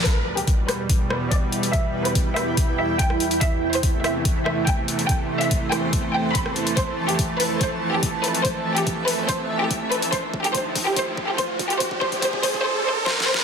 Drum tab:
HH |x--------x--x-----x-----x-----------x-----x--x--|x--------x--x-----x-----x-----------x-----x--x--|x--------x--x-----x-----x-----------x-----x--x--|x--------x--x-----x-----x-----------x-----x--x--|
SD |------------------r-----------r-----------------|------------------r--------------------r--------|------------------r-----------r-----------------|------------------r--------------------r--------|
BD |o-----------o-----------o-----------o-----------|o-----------o-----------o-----------o-----------|o-----------o-----------o-----------o-----------|o-----------o-----------o-----------o-----------|

HH |x--------x--x-----o-----x-----------x-----x--x--|x--------x--x-----o-----x-----------x-----x--x--|x--------x--x-----o-----x-----------x-----x--x--|x--------x--x-----o-----------------------------|
SD |------------------------------------------------|------------------------------------------------|------------------------------------------------|------------------------------------o---o---o---|
BD |o-----------o-----------o-----------o-----------|o-----------o-----------o-----------o-----------|o-----o-----o-----o-----o-----o-----o-----o-----|o--o--o--o--o--o--o--o--------------------------|